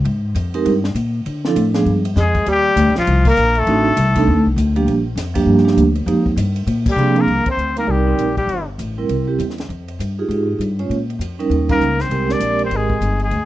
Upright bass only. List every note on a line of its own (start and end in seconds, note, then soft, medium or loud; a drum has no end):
0.05 0.34 G#2 medium
0.35 0.65 F2 medium
0.65 0.94 G2 medium
0.94 1.25 A#2 medium
1.26 1.55 D3 medium
1.55 1.85 A2 medium
1.85 2.15 G2 medium
2.16 2.46 F2 medium
2.46 2.75 D#2 medium
2.76 2.88 D2 medium
2.87 2.97 C2 medium
2.97 3.07 A#1 medium
3.07 3.36 C2 medium
3.37 3.66 A#1 medium
3.67 3.96 A1 medium
3.97 4.26 C2 medium
4.27 4.37 D#2 medium
4.37 4.46 D2 medium
4.46 4.56 C2 medium
4.56 4.86 D2 medium
4.86 5.15 A#1 medium
5.16 5.45 F2 medium
5.46 5.76 G2 medium
5.77 6.06 D2 medium
6.06 6.36 F2 medium
6.36 6.66 G2 medium
6.67 6.95 A#2 medium
6.96 7.26 C3 medium
7.26 7.44 C2 medium
7.46 muted upright bass stroke soft
7.57 7.86 D2 medium
7.87 8.17 C2 medium
8.19 8.46 A#1 medium
8.47 8.77 G1 medium
8.78 9.08 A1 medium
9.09 9.38 C2 medium
9.39 9.68 E2 medium
9.69 9.98 F2 medium
9.99 10.28 G2 medium
10.28 10.58 G#2 medium
10.59 10.89 G2 medium
10.89 11.18 A#2 medium
11.19 11.49 F2 medium
11.50 11.80 D#2 medium
11.80 12.09 C#2 medium
12.10 12.39 C2 medium
12.40 12.70 A#1 medium
12.70 13.00 G#1 medium
13.01 13.30 G1 medium
13.30 13.45 D2 medium